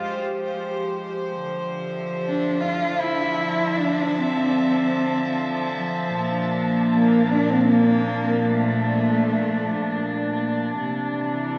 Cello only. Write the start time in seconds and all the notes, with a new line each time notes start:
Already playing: F4
2.24 D4
2.60 F4
3.00 E4
3.77 D4
4.18 C4
6.92 A#3
7.31 D4
7.50 C4
7.70 A#3
8.49 A3